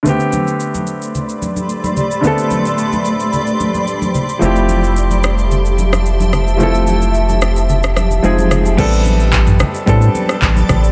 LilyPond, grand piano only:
\new Staff \with { instrumentName = "Grand piano" } { \time 4/4 \key a \minor \tempo 4 = 110 <d a b c' g'>1 | <d a b c' a'>1 | <f a c' e' g'>1 | <f a c' e' a'>2. <f aes c' ees' aes'>4 |
<g b c' d' a'>4. r8 <g b c' d' a'>4. r8 | }